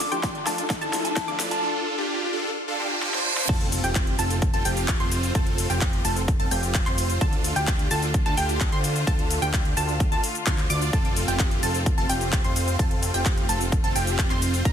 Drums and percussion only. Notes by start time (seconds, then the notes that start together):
0.00 snare, open hi-hat, shaker
0.12 closed hi-hat, shaker
0.23 kick, snare, closed hi-hat, shaker
0.35 closed hi-hat
0.47 snare, open hi-hat, shaker
0.58 closed hi-hat, shaker
0.70 kick, snare, closed hi-hat, shaker
0.82 closed hi-hat, shaker
0.93 snare, open hi-hat, shaker
1.05 closed hi-hat, shaker
1.16 kick, snare, closed hi-hat, shaker
1.28 closed hi-hat, shaker
1.40 snare, open hi-hat, shaker
1.51 closed hi-hat, shaker
3.02 snare
3.14 snare
3.37 snare
3.49 kick, closed hi-hat, crash, shaker
3.61 closed hi-hat
3.72 open hi-hat, shaker
3.84 closed hi-hat, shaker
3.95 kick, clap, closed hi-hat, shaker
4.07 closed hi-hat
4.19 open hi-hat, shaker
4.30 closed hi-hat, shaker
4.42 kick, closed hi-hat, shaker
4.54 closed hi-hat
4.65 open hi-hat, shaker
4.77 closed hi-hat, shaker
4.88 kick, clap, closed hi-hat, shaker
5.00 closed hi-hat
5.12 open hi-hat, shaker
5.23 closed hi-hat, shaker
5.35 kick, closed hi-hat, shaker
5.47 closed hi-hat
5.58 open hi-hat, shaker
5.70 closed hi-hat, shaker
5.81 kick, clap, closed hi-hat, shaker
5.93 closed hi-hat
6.05 open hi-hat, shaker
6.16 closed hi-hat, shaker
6.28 kick, closed hi-hat, shaker
6.40 closed hi-hat
6.51 open hi-hat, shaker
6.63 closed hi-hat, shaker
6.74 kick, clap, closed hi-hat, shaker
6.86 clap, closed hi-hat
6.98 open hi-hat, shaker
7.10 closed hi-hat, shaker
7.21 kick, closed hi-hat, shaker
7.33 closed hi-hat
7.44 open hi-hat, shaker
7.56 closed hi-hat, shaker
7.67 kick, clap, closed hi-hat, shaker
7.79 closed hi-hat
7.91 open hi-hat, shaker
8.03 closed hi-hat, shaker
8.14 kick, closed hi-hat, shaker
8.26 closed hi-hat
8.37 open hi-hat, shaker
8.49 closed hi-hat, shaker
8.61 kick, clap, closed hi-hat, shaker
8.72 closed hi-hat
8.84 open hi-hat, shaker
8.96 closed hi-hat, shaker
9.07 kick, closed hi-hat, shaker
9.19 closed hi-hat
9.30 open hi-hat, shaker
9.42 closed hi-hat, shaker
9.54 kick, clap, closed hi-hat, shaker
9.65 closed hi-hat
9.77 open hi-hat, shaker
9.89 closed hi-hat, shaker
10.00 kick, closed hi-hat, shaker
10.12 closed hi-hat
10.24 open hi-hat, shaker
10.35 closed hi-hat, shaker
10.46 kick, clap, closed hi-hat, shaker
10.58 clap, closed hi-hat
10.70 open hi-hat, shaker
10.82 closed hi-hat, shaker
10.93 kick, closed hi-hat, shaker
11.05 closed hi-hat
11.16 open hi-hat, shaker
11.28 closed hi-hat, shaker
11.39 kick, clap, closed hi-hat, shaker
11.51 closed hi-hat
11.63 open hi-hat, shaker
11.75 closed hi-hat, shaker
11.86 kick, closed hi-hat, shaker
11.98 closed hi-hat
12.09 open hi-hat, shaker
12.21 closed hi-hat, shaker
12.33 kick, clap, closed hi-hat, shaker
12.44 closed hi-hat
12.56 open hi-hat, shaker
12.68 closed hi-hat, shaker
12.79 kick, closed hi-hat, shaker
12.91 closed hi-hat
13.03 open hi-hat, shaker
13.14 closed hi-hat, shaker
13.26 kick, clap, closed hi-hat, shaker
13.38 closed hi-hat
13.49 open hi-hat, shaker
13.61 closed hi-hat, shaker
13.72 kick, closed hi-hat, shaker
13.84 closed hi-hat
13.96 open hi-hat, shaker
14.07 closed hi-hat, shaker
14.19 kick, clap, closed hi-hat, shaker
14.30 clap, closed hi-hat
14.42 open hi-hat, shaker
14.54 closed hi-hat, shaker
14.65 kick, closed hi-hat, shaker